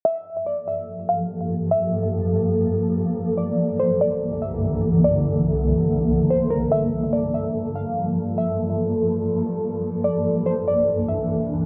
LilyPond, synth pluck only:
\new Staff \with { instrumentName = "Synth pluck" } { \time 4/4 \key g \dorian \tempo 4 = 144 e''4 d''8 e''4 f''4. | e''4 r2. | d''4 c''8 d''4 e''4. | d''4 r2 c''8 bes'8 |
e''4 d''8 e''4 f''4. | e''4 r2. | d''4 c''8 d''4 e''4. | }